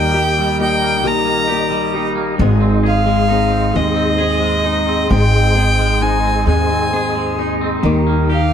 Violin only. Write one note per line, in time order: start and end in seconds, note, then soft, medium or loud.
0.00 0.60 G5 loud
0.62 1.09 G5 loud
1.07 2.07 A#5 loud
2.87 3.78 F5 loud
3.76 5.12 D#5 medium
5.11 6.04 G5 loud
6.02 6.47 G#5 loud
6.48 7.46 G#5 loud
8.31 8.53 F5 medium